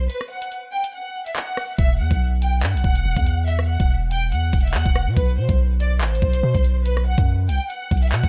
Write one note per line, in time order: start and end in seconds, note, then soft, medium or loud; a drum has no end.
0.09 0.27 B4 medium
0.09 closed hi-hat medium
0.21 cross-stick medium
0.31 0.49 F#5 medium
0.42 closed hi-hat medium
0.52 closed hi-hat medium
0.73 0.91 G5 loud
0.84 closed hi-hat medium
0.94 1.24 F#5 medium
1.26 1.35 E5 medium
1.26 closed hi-hat medium
1.36 1.76 F#5 medium
1.36 clap loud
1.57 cross-stick medium
1.57 open hi-hat soft
1.78 2.01 E1 loud
1.78 1.97 E5 medium
1.78 kick loud
1.78 closed hi-hat medium
1.99 2.10 E2 loud
1.99 2.18 F#5 medium
2.11 2.64 B1 loud
2.11 kick loud
2.11 closed hi-hat medium
2.42 2.60 G5 medium
2.42 closed hi-hat medium
2.63 2.76 G2 loud
2.63 3.43 F#5 loud
2.63 clap loud
2.63 closed hi-hat medium
2.70 closed hi-hat medium
2.74 2.84 B1 loud
2.74 closed hi-hat medium
2.84 3.04 E1 loud
2.84 kick medium
2.95 closed hi-hat medium
3.05 3.16 E1 loud
3.17 3.77 E2 loud
3.17 kick loud
3.17 closed hi-hat medium
3.27 closed hi-hat medium
3.47 3.66 E5 medium
3.47 closed hi-hat medium
3.59 cross-stick medium
3.69 3.87 F#5 medium
3.80 4.34 E1 loud
3.80 kick loud
3.80 closed hi-hat medium
4.11 4.29 G5 loud
4.11 closed hi-hat medium
4.32 4.52 E2 loud
4.32 4.63 F#5 medium
4.32 closed hi-hat medium
4.53 4.76 E1 loud
4.53 kick loud
4.53 closed hi-hat medium
4.60 closed hi-hat medium
4.64 4.73 E5 medium
4.64 closed hi-hat medium
4.74 4.85 E2 loud
4.74 5.14 F#5 loud
4.74 clap loud
4.86 5.08 E1 loud
4.86 kick loud
4.95 cross-stick medium
4.95 closed hi-hat medium
5.07 5.16 B2 loud
5.17 5.39 B1 loud
5.17 5.35 B4 medium
5.17 kick loud
5.17 closed hi-hat medium
5.38 5.48 B2 loud
5.38 5.56 C5 medium
5.49 6.02 B1 loud
5.49 kick loud
5.49 closed hi-hat medium
5.80 5.98 D5 medium
5.80 closed hi-hat medium
6.01 6.21 A1 loud
6.01 6.82 C5 loud
6.01 clap loud
6.01 closed hi-hat medium
6.08 closed hi-hat medium
6.15 closed hi-hat medium
6.22 6.42 B1 loud
6.22 kick loud
6.33 closed hi-hat medium
6.43 6.54 B2 loud
6.54 7.15 B1 loud
6.54 kick loud
6.54 closed hi-hat medium
6.64 closed hi-hat medium
6.85 7.03 B4 medium
6.85 closed hi-hat medium
6.97 cross-stick medium
7.07 7.25 F#5 medium
7.18 7.50 F#2 loud
7.18 kick loud
7.18 closed hi-hat medium
7.49 7.60 C2 loud
7.49 7.67 G5 loud
7.49 closed hi-hat medium
7.70 8.01 F#5 medium
7.70 closed hi-hat medium
7.91 8.14 B1 loud
7.91 kick medium
7.91 closed hi-hat medium
7.97 closed hi-hat medium
8.02 8.11 E5 medium
8.02 closed hi-hat medium
8.07 closed hi-hat medium
8.12 8.23 B2 loud
8.12 8.29 F#5 medium
8.12 clap loud
8.24 8.29 B1 loud
8.24 kick loud